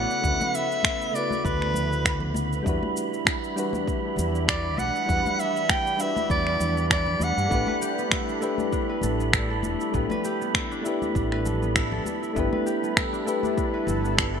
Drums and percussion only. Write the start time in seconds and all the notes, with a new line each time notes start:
0.11 shaker
0.24 kick, shaker
0.40 high conga, low conga, shaker
0.55 shaker
0.72 shaker
0.83 finger snap, kick, high conga, shaker
1.02 shaker
1.15 shaker
1.31 high conga, shaker
1.45 kick, shaker
1.62 finger snap
1.74 high conga, low conga, shaker
1.93 shaker
2.05 finger snap, kick, shaker
2.20 low conga
2.34 high conga, shaker
2.53 shaker
2.66 kick, shaker
2.83 high conga
2.97 shaker
3.14 shaker
3.25 finger snap, kick, high conga, shaker
3.44 shaker
3.58 shaker
3.73 high conga, shaker
3.88 kick, shaker
4.16 high conga, low conga, shaker
4.35 shaker
4.48 finger snap, kick, shaker
4.78 high conga, shaker
4.96 shaker
5.09 kick, shaker
5.25 high conga, low conga, shaker
5.40 shaker
5.57 shaker
5.69 finger snap, kick, high conga, shaker
5.87 shaker
6.00 shaker
6.17 high conga, shaker
6.30 kick, shaker
6.47 finger snap
6.60 high conga, low conga, shaker
6.77 shaker
6.91 finger snap, kick, shaker
7.07 low conga
7.20 high conga, shaker
7.38 shaker
7.51 kick, shaker
7.67 high conga
7.82 shaker
7.98 shaker
8.11 finger snap, kick, high conga, shaker
8.29 shaker
8.42 shaker
8.58 high conga, shaker
8.73 kick, shaker
9.01 high conga, low conga, shaker
9.20 shaker
9.33 finger snap, kick, shaker
9.63 high conga, shaker
9.81 shaker
9.94 kick, shaker
10.10 high conga, low conga, shaker
10.25 shaker
10.42 shaker
10.54 finger snap, kick, high conga, shaker
10.72 shaker
10.85 shaker
11.02 high conga, shaker
11.15 kick, shaker
11.32 finger snap
11.46 high conga, low conga, shaker
11.63 shaker
11.76 finger snap, kick, shaker
11.92 low conga
12.05 high conga, shaker
12.23 shaker
12.36 kick, shaker
12.53 high conga
12.67 shaker
12.84 shaker
12.97 finger snap, kick, high conga, shaker
13.14 shaker
13.28 shaker
13.43 high conga, shaker
13.58 kick, shaker
13.87 high conga, low conga, shaker
14.05 shaker
14.18 finger snap, kick, shaker